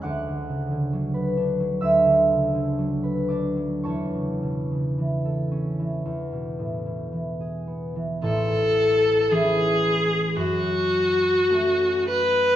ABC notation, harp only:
X:1
M:4/4
L:1/16
Q:1/4=56
K:A
V:1 name="Harp"
[Bfbd'f']8 [ee']6 [dd']2 | [cac']12- [cac']2 z2 | z16 |]
V:2 name="Harp" clef=bass
D,, D, C, D, F, B D F, D,, D, C, D, F, B D F, | E,, C, B,, C, E, A C E, E,, B,, A,, B,, E, G B, E, | [A,,,A,,]4 [E,CE]4 F,,4 [A,CF]4 |]